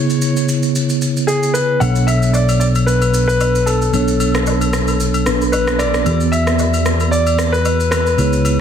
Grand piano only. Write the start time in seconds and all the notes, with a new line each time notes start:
Already playing: C#5
1.27 G#4
1.54 B4
1.80 F#5
2.07 E5
2.33 D5
2.60 D5
2.86 B4
3.28 B4
3.66 A4
5.52 B4
5.79 D5
6.32 E5
7.11 D5
7.52 B4
7.91 B4